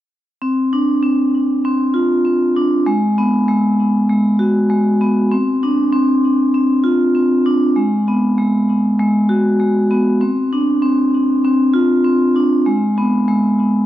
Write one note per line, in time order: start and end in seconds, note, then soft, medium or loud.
0.42 1.01 C4 medium
0.73 1.95 D4 medium
1.03 1.64 C4 medium
1.65 2.24 C4 medium
1.94 2.86 F4 medium
2.25 2.86 C4 medium
2.56 2.87 D4 medium
2.86 3.47 G#3 medium
3.18 4.40 B3 medium
3.48 4.08 G#3 medium
4.09 4.69 G#3 medium
4.39 5.31 F#4 medium
4.70 5.31 G#3 medium
5.01 5.32 B3 medium
5.32 5.91 C4 medium
5.63 6.85 D4 medium
5.92 6.53 C4 medium
6.54 7.14 C4 medium
6.84 7.76 F4 medium
7.15 7.76 C4 medium
7.46 7.76 D4 medium
7.76 8.37 G#3 medium
8.08 9.30 B3 medium
8.38 8.98 G#3 medium
9.00 9.59 G#3 medium
9.29 10.21 F#4 medium
9.60 10.21 G#3 medium
9.91 10.21 B3 medium
10.21 10.81 C4 medium
10.53 11.75 D4 medium
10.82 11.43 C4 medium
11.45 12.03 C4 medium
11.74 12.66 F4 medium
12.05 12.66 C4 medium
12.36 12.66 D4 medium
12.66 13.27 G#3 medium
12.98 13.86 B3 medium
13.28 13.86 G#3 medium